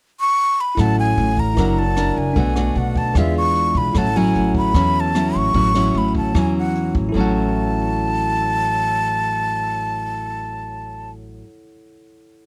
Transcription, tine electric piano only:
0, 0, Header, 1, 2, 480
1, 0, Start_track
1, 0, Key_signature, 3, "major"
1, 0, Tempo, 398406
1, 935, Time_signature, 4, 2, 24, 8
1, 15012, End_track
2, 0, Start_track
2, 0, Title_t, "Tine electric piano"
2, 0, Program_c, 0, 4
2, 904, Note_on_c, 0, 64, 44
2, 930, Note_on_c, 0, 69, 42
2, 958, Note_on_c, 0, 73, 38
2, 978, Note_on_c, 0, 78, 50
2, 1134, Control_c, 0, 64, 127
2, 1849, Note_off_c, 0, 64, 0
2, 1864, Note_on_c, 0, 64, 43
2, 1869, Note_off_c, 0, 69, 0
2, 1883, Note_off_c, 0, 73, 0
2, 1886, Note_on_c, 0, 70, 41
2, 1893, Note_off_c, 0, 78, 0
2, 1906, Control_c, 0, 64, 0
2, 1919, Note_on_c, 0, 74, 44
2, 1935, Note_on_c, 0, 78, 50
2, 2146, Control_c, 0, 64, 127
2, 2811, Note_on_c, 0, 62, 50
2, 2815, Note_off_c, 0, 64, 0
2, 2826, Note_off_c, 0, 70, 0
2, 2838, Note_on_c, 0, 69, 44
2, 2843, Note_off_c, 0, 74, 0
2, 2851, Note_off_c, 0, 78, 0
2, 2861, Control_c, 0, 64, 0
2, 2863, Note_on_c, 0, 71, 41
2, 2887, Note_on_c, 0, 78, 53
2, 3070, Control_c, 0, 64, 127
2, 3768, Note_off_c, 0, 62, 0
2, 3782, Note_off_c, 0, 69, 0
2, 3786, Note_on_c, 0, 68, 42
2, 3794, Note_off_c, 0, 71, 0
2, 3807, Note_off_c, 0, 78, 0
2, 3815, Note_on_c, 0, 74, 41
2, 3821, Control_c, 0, 64, 0
2, 3842, Note_on_c, 0, 77, 49
2, 4012, Control_c, 0, 64, 127
2, 4736, Note_off_c, 0, 68, 0
2, 4739, Note_on_c, 0, 64, 47
2, 4751, Note_off_c, 0, 74, 0
2, 4753, Note_on_c, 0, 69, 46
2, 4764, Note_off_c, 0, 77, 0
2, 4777, Note_on_c, 0, 73, 46
2, 4780, Control_c, 0, 64, 0
2, 4803, Note_on_c, 0, 78, 55
2, 4983, Control_c, 0, 64, 127
2, 8526, Note_off_c, 0, 64, 0
2, 8540, Note_on_c, 0, 64, 55
2, 8558, Note_off_c, 0, 69, 0
2, 8570, Note_off_c, 0, 73, 0
2, 8581, Note_on_c, 0, 69, 54
2, 8584, Note_off_c, 0, 78, 0
2, 8631, Control_c, 0, 64, 0
2, 8633, Note_on_c, 0, 73, 50
2, 8680, Note_on_c, 0, 78, 63
2, 8816, Control_c, 0, 64, 127
2, 13664, Note_off_c, 0, 64, 0
2, 13705, Note_off_c, 0, 69, 0
2, 13757, Note_off_c, 0, 73, 0
2, 13804, Note_off_c, 0, 78, 0
2, 15012, End_track
0, 0, End_of_file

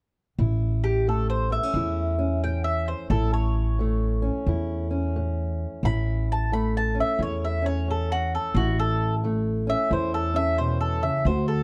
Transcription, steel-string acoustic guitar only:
0, 0, Header, 1, 2, 480
1, 0, Start_track
1, 0, Key_signature, 3, "major"
1, 0, Tempo, 679502
1, 273, Time_signature, 4, 2, 24, 8
1, 8217, End_track
2, 0, Start_track
2, 0, Title_t, "Steel-string acoustic guitar"
2, 0, Program_c, 0, 25
2, 276, Note_on_c, 0, 45, 66
2, 280, Note_on_c, 0, 64, 60
2, 720, Note_off_c, 0, 45, 0
2, 758, Note_on_c, 0, 45, 72
2, 761, Note_on_c, 0, 57, 55
2, 1060, Note_on_c, 0, 59, 53
2, 1153, Note_off_c, 0, 59, 0
2, 1153, Note_on_c, 0, 61, 46
2, 1202, Note_off_c, 0, 45, 0
2, 1239, Note_on_c, 0, 45, 65
2, 1241, Note_off_c, 0, 64, 0
2, 1243, Note_on_c, 0, 64, 60
2, 1535, Note_off_c, 0, 61, 0
2, 1544, Note_on_c, 0, 61, 57
2, 1682, Note_off_c, 0, 45, 0
2, 1724, Note_on_c, 0, 45, 75
2, 2165, Note_off_c, 0, 45, 0
2, 2199, Note_on_c, 0, 45, 70
2, 2205, Note_off_c, 0, 64, 0
2, 2208, Note_on_c, 0, 64, 60
2, 2643, Note_off_c, 0, 45, 0
2, 2678, Note_on_c, 0, 45, 70
2, 2685, Note_off_c, 0, 57, 0
2, 2688, Note_on_c, 0, 57, 57
2, 2980, Note_off_c, 0, 61, 0
2, 2982, Note_on_c, 0, 61, 60
2, 3123, Note_off_c, 0, 45, 0
2, 3163, Note_on_c, 0, 45, 65
2, 3165, Note_off_c, 0, 64, 0
2, 3168, Note_on_c, 0, 64, 63
2, 3463, Note_off_c, 0, 61, 0
2, 3465, Note_on_c, 0, 61, 56
2, 3605, Note_off_c, 0, 45, 0
2, 3645, Note_on_c, 0, 45, 73
2, 4086, Note_off_c, 0, 45, 0
2, 4130, Note_on_c, 0, 45, 69
2, 4136, Note_off_c, 0, 64, 0
2, 4139, Note_on_c, 0, 64, 61
2, 4568, Note_off_c, 0, 45, 0
2, 4607, Note_on_c, 0, 45, 72
2, 4611, Note_off_c, 0, 57, 0
2, 4613, Note_on_c, 0, 57, 61
2, 4905, Note_off_c, 0, 61, 0
2, 4908, Note_on_c, 0, 61, 57
2, 5046, Note_off_c, 0, 45, 0
2, 5084, Note_off_c, 0, 64, 0
2, 5084, Note_on_c, 0, 45, 68
2, 5087, Note_on_c, 0, 64, 61
2, 5374, Note_off_c, 0, 61, 0
2, 5383, Note_on_c, 0, 61, 61
2, 5524, Note_off_c, 0, 45, 0
2, 5567, Note_on_c, 0, 45, 76
2, 6006, Note_off_c, 0, 45, 0
2, 6017, Note_off_c, 0, 61, 0
2, 6041, Note_off_c, 0, 64, 0
2, 6050, Note_on_c, 0, 45, 75
2, 6054, Note_on_c, 0, 64, 65
2, 6487, Note_off_c, 0, 45, 0
2, 6526, Note_on_c, 0, 45, 70
2, 6528, Note_off_c, 0, 57, 0
2, 6531, Note_on_c, 0, 57, 59
2, 6830, Note_on_c, 0, 61, 58
2, 6964, Note_off_c, 0, 45, 0
2, 6996, Note_off_c, 0, 64, 0
2, 7002, Note_on_c, 0, 45, 68
2, 7006, Note_on_c, 0, 64, 61
2, 7294, Note_off_c, 0, 61, 0
2, 7303, Note_on_c, 0, 61, 59
2, 7442, Note_off_c, 0, 45, 0
2, 7482, Note_on_c, 0, 47, 62
2, 7778, Note_off_c, 0, 47, 0
2, 7788, Note_on_c, 0, 49, 56
2, 7935, Note_off_c, 0, 61, 0
2, 7958, Note_off_c, 0, 64, 0
2, 7960, Note_off_c, 0, 49, 0
2, 7966, Note_on_c, 0, 50, 71
2, 7969, Note_on_c, 0, 66, 62
2, 8217, Note_off_c, 0, 50, 0
2, 8217, Note_off_c, 0, 57, 0
2, 8217, Note_off_c, 0, 66, 0
2, 8217, End_track
0, 0, End_of_file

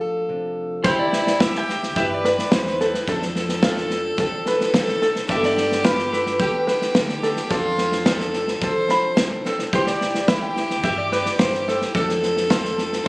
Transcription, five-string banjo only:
0, 0, Header, 1, 2, 480
1, 0, Start_track
1, 0, Key_signature, 0, "major"
1, 0, Tempo, 555042
1, 735, Time_signature, 4, 2, 24, 8
1, 11312, End_track
2, 0, Start_track
2, 0, Title_t, "Five-string banjo"
2, 0, Program_c, 0, 105
2, 740, Note_on_c, 0, 67, 93
2, 1210, Note_off_c, 0, 67, 0
2, 1216, Note_on_c, 0, 64, 74
2, 1689, Note_off_c, 0, 64, 0
2, 1700, Note_on_c, 0, 67, 91
2, 1935, Note_off_c, 0, 67, 0
2, 1948, Note_on_c, 0, 71, 76
2, 2415, Note_off_c, 0, 71, 0
2, 2429, Note_on_c, 0, 69, 81
2, 2660, Note_off_c, 0, 69, 0
2, 2670, Note_on_c, 0, 69, 96
2, 3136, Note_off_c, 0, 69, 0
2, 3151, Note_on_c, 0, 65, 93
2, 3616, Note_off_c, 0, 65, 0
2, 3630, Note_on_c, 0, 69, 100
2, 3860, Note_off_c, 0, 69, 0
2, 3870, Note_on_c, 0, 71, 92
2, 4335, Note_off_c, 0, 71, 0
2, 4342, Note_on_c, 0, 69, 81
2, 4570, Note_off_c, 0, 69, 0
2, 4580, Note_on_c, 0, 69, 109
2, 5050, Note_off_c, 0, 69, 0
2, 5058, Note_on_c, 0, 65, 76
2, 5529, Note_off_c, 0, 65, 0
2, 5534, Note_on_c, 0, 67, 85
2, 5770, Note_on_c, 0, 71, 79
2, 5771, Note_off_c, 0, 67, 0
2, 6244, Note_off_c, 0, 71, 0
2, 6256, Note_on_c, 0, 69, 84
2, 6484, Note_off_c, 0, 69, 0
2, 6495, Note_on_c, 0, 69, 99
2, 6966, Note_off_c, 0, 69, 0
2, 6982, Note_on_c, 0, 65, 83
2, 7450, Note_off_c, 0, 65, 0
2, 7468, Note_on_c, 0, 69, 87
2, 7698, Note_off_c, 0, 69, 0
2, 7702, Note_on_c, 0, 83, 87
2, 8170, Note_off_c, 0, 83, 0
2, 8187, Note_on_c, 0, 69, 82
2, 8416, Note_on_c, 0, 67, 102
2, 8417, Note_off_c, 0, 69, 0
2, 8886, Note_off_c, 0, 67, 0
2, 8893, Note_on_c, 0, 64, 86
2, 9365, Note_off_c, 0, 64, 0
2, 9380, Note_on_c, 0, 67, 83
2, 9613, Note_off_c, 0, 67, 0
2, 9620, Note_on_c, 0, 71, 80
2, 10088, Note_off_c, 0, 71, 0
2, 10102, Note_on_c, 0, 69, 79
2, 10326, Note_off_c, 0, 69, 0
2, 10336, Note_on_c, 0, 69, 100
2, 10806, Note_off_c, 0, 69, 0
2, 10815, Note_on_c, 0, 65, 76
2, 11285, Note_off_c, 0, 65, 0
2, 11312, End_track
0, 0, End_of_file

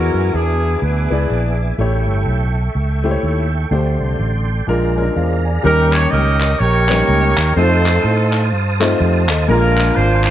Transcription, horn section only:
0, 0, Header, 1, 2, 480
1, 0, Start_track
1, 0, Tempo, 481541
1, 1776, Time_signature, 4, 2, 24, 8
1, 10271, End_track
2, 0, Start_track
2, 0, Title_t, "Horn section"
2, 0, Program_c, 0, 61
2, 0, Note_on_c, 0, 66, 60
2, 0, Note_on_c, 0, 70, 77
2, 296, Note_off_c, 0, 66, 0
2, 334, Note_off_c, 0, 70, 0
2, 346, Note_on_c, 0, 62, 54
2, 346, Note_on_c, 0, 68, 73
2, 347, Note_on_c, 0, 59, 57
2, 811, Note_off_c, 0, 62, 0
2, 811, Note_off_c, 0, 68, 0
2, 823, Note_on_c, 0, 62, 49
2, 823, Note_on_c, 0, 68, 50
2, 827, Note_on_c, 0, 71, 66
2, 1262, Note_off_c, 0, 59, 0
2, 1549, Note_off_c, 0, 71, 0
2, 1741, Note_off_c, 0, 62, 0
2, 1741, Note_off_c, 0, 68, 0
2, 5632, Note_on_c, 0, 70, 96
2, 5633, Note_on_c, 0, 67, 73
2, 5634, Note_on_c, 0, 61, 73
2, 5896, Note_off_c, 0, 70, 0
2, 5900, Note_on_c, 0, 73, 96
2, 6086, Note_off_c, 0, 67, 0
2, 6088, Note_on_c, 0, 75, 108
2, 6098, Note_on_c, 0, 67, 73
2, 6100, Note_off_c, 0, 73, 0
2, 6101, Note_on_c, 0, 70, 83
2, 6550, Note_off_c, 0, 61, 0
2, 6568, Note_on_c, 0, 73, 95
2, 6574, Note_off_c, 0, 67, 0
2, 6576, Note_off_c, 0, 70, 0
2, 6576, Note_off_c, 0, 75, 0
2, 6586, Note_on_c, 0, 67, 76
2, 6588, Note_on_c, 0, 70, 70
2, 7504, Note_off_c, 0, 67, 0
2, 7505, Note_off_c, 0, 70, 0
2, 7527, Note_on_c, 0, 72, 86
2, 7535, Note_off_c, 0, 73, 0
2, 7537, Note_on_c, 0, 69, 65
2, 7540, Note_on_c, 0, 63, 63
2, 8260, Note_off_c, 0, 72, 0
2, 8458, Note_off_c, 0, 69, 0
2, 8459, Note_off_c, 0, 63, 0
2, 9466, Note_on_c, 0, 70, 94
2, 9469, Note_on_c, 0, 62, 67
2, 9472, Note_on_c, 0, 65, 66
2, 9907, Note_off_c, 0, 70, 0
2, 9923, Note_on_c, 0, 72, 91
2, 10196, Note_off_c, 0, 72, 0
2, 10208, Note_on_c, 0, 72, 96
2, 10271, Note_off_c, 0, 62, 0
2, 10271, Note_off_c, 0, 65, 0
2, 10271, Note_off_c, 0, 72, 0
2, 10271, End_track
0, 0, End_of_file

